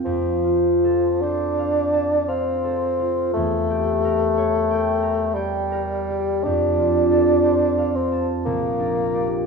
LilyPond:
<<
  \new Staff \with { instrumentName = "Harp" } { \time 3/4 \key f \major \tempo 4 = 58 \tuplet 3/2 { <f, c' c''>8 f'8 a'8 c''8 f''8 a''8 f''8 a'8 f'8 } | \tuplet 3/2 { e,8 g'8 bes'8 cis''8 g''8 bes''8 g''8 bes'8 g'8 } | \tuplet 3/2 { f,8 f'8 a'8 c''8 f''8 a''8 bes,,8 d'8 <g' d''>8 } | }
  \new Staff \with { instrumentName = "Bassoon" } { \time 3/4 \key f \major f4 d'4 c'4 | a2 g4 | d'4. c'8 bes4 | }
>>